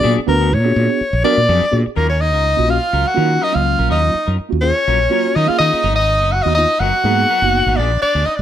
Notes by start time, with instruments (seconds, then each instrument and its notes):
Already playing: tine electric piano B3 D4 F#4 G#4, soprano saxophone D5
0.03 fretless electric bass A#2, clean electric guitar F#3 B3 D4 G#4
0.18 muted fretless electric bass stroke
0.27 fretless electric bass D2, tine electric piano B3 D4 F#4 B4, soprano saxophone A#4, muted clean electric guitar stroke
0.41 clean electric guitar B3 D4 G#4
0.51 fretless electric bass A#2, soprano saxophone C#5, muted clean electric guitar stroke
0.64 tine electric piano B3 D4 F#4 G#4, muted clean electric guitar stroke
0.76 fretless electric bass A#2
0.90 muted clean electric guitar stroke
1.01 muted fretless electric bass stroke
1.13 fretless electric bass A#1, muted clean electric guitar stroke
1.24 clean electric guitar F#3 B3 D4 G#4, tine electric piano B3 D4 F#4 A#4, soprano saxophone D5
1.38 fretless electric bass A#2, muted clean electric guitar stroke
1.48 fretless electric bass F2, clean electric guitar F#3 B3 D4 G#4, tine electric piano F#4 G#4
1.61 muted fretless electric bass stroke
1.71 fretless electric bass A#2, tine electric piano B3 D4 F#4 G#4, muted clean electric guitar stroke
1.86 muted clean electric guitar stroke, muted fretless electric bass stroke
1.96 fretless electric bass D#2, clean electric guitar F#3 C#4 F4 A#4, tenor saxophone A#3, soprano saxophone A#4
2.10 tenor saxophone C#4, soprano saxophone C#5, muted clean electric guitar stroke
2.21 tenor saxophone D#4, soprano saxophone D#5, muted clean electric guitar stroke
2.34 fretless electric bass C#2, clean electric guitar C#4 F4 A#4
2.46 muted clean electric guitar stroke
2.57 fretless electric bass A#1, tine electric piano A#3 C#4 F4 F#4
2.68 tine electric piano A#3 C#4 F4 F#4, tenor saxophone F4, soprano saxophone F5, muted clean electric guitar stroke
2.80 tine electric piano F4, muted clean electric guitar stroke
2.91 fretless electric bass C#2, clean electric guitar F#3 C#4 F4 A#4, tine electric piano F4 G#4
3.06 tenor saxophone F#4, soprano saxophone F#5, muted clean electric guitar stroke
3.14 fretless electric bass D#3, clean electric guitar F#3 C#4 F4 A#4, tine electric piano A#3 C#4 F4 F#4
3.41 clean electric guitar F#3 C#4 F4 A#4, tenor saxophone D#4, soprano saxophone D#5
3.52 fretless electric bass C#2, tine electric piano F#3 A#3 C#4 F4, tenor saxophone F4, soprano saxophone F5, muted clean electric guitar stroke
3.65 muted clean electric guitar stroke
3.79 fretless electric bass A#1, clean electric guitar C#4 F4 A#4
3.89 fretless electric bass D#2, clean electric guitar F#3 C#4 F4 A#4, tenor saxophone D#4, soprano saxophone D#5
4.02 muted clean electric guitar stroke
4.14 muted clean electric guitar stroke, muted fretless electric bass stroke
4.27 fretless electric bass F#2, clean electric guitar C#4 F4 A#4
4.38 muted clean electric guitar stroke, muted fretless electric bass stroke
4.49 fretless electric bass D#2, tine electric piano A#3 C#4 F4 F#4
4.61 tine electric piano A#3 C#4 F4 G#4, tenor saxophone C#4, soprano saxophone C#5, muted clean electric guitar stroke
4.75 muted clean electric guitar stroke
4.87 fretless electric bass A#1, clean electric guitar F#3 C#4 F4 A#4, tine electric piano F4 F#4
5.01 muted clean electric guitar stroke
5.10 clean electric guitar F#3 C#4 F4 A#4, tine electric piano A#3 C#4 F4 F#4
5.35 fretless electric bass D#3, clean electric guitar F#3 C#4 F4 A#4, tenor saxophone D#4, soprano saxophone D#5
5.46 tine electric piano A#3 C#4 F4 G#4, tenor saxophone F4, soprano saxophone F5, muted fretless electric bass stroke
5.58 fretless electric bass D#3, tenor saxophone D#4, soprano saxophone D#5, muted clean electric guitar stroke
5.72 clean electric guitar C#4 F4 A#4, muted fretless electric bass stroke
5.83 fretless electric bass G#1, clean electric guitar F#3 B3 D#4 A#4
5.96 tenor saxophone D#4, soprano saxophone D#5, muted clean electric guitar stroke
6.08 muted clean electric guitar stroke
6.21 fretless electric bass F#1, clean electric guitar B3 D#4 A#4
6.32 tenor saxophone F#4, soprano saxophone F#5, muted clean electric guitar stroke
6.43 fretless electric bass D#2, tine electric piano A#3 B3 D#4 F#4, soprano saxophone D#5
6.48 tenor saxophone D#4
6.55 tine electric piano A#3 B3 D#4 F4, tenor saxophone D#4, soprano saxophone D#5, muted clean electric guitar stroke
6.69 muted clean electric guitar stroke
6.80 fretless electric bass F#1, clean electric guitar F#3 B3 D#4 A#4, tine electric piano D#4 F4, tenor saxophone F#4, soprano saxophone F#5
6.93 muted clean electric guitar stroke
7.03 fretless electric bass G#2, clean electric guitar F#3 B3 D#4 A#4, tine electric piano A#3 B3 D#4 G#4
7.29 clean electric guitar F#3 B3 D#4 A#4
7.42 fretless electric bass F#1, tine electric piano A#3 B3 D#4 F#4
7.55 muted clean electric guitar stroke
7.66 fretless electric bass G#1, clean electric guitar B3 D#4 A#4
7.76 fretless electric bass A#1, clean electric guitar F3 B3 D4 G#4, tenor saxophone D4, soprano saxophone D5
7.92 muted clean electric guitar stroke
8.02 tenor saxophone D4, soprano saxophone D5, muted fretless electric bass stroke, muted clean electric guitar stroke
8.15 fretless electric bass D2, clean electric guitar B3 D4 G#4
8.26 tenor saxophone D#4, soprano saxophone D#5, muted clean electric guitar stroke
8.35 tenor saxophone D4, soprano saxophone D5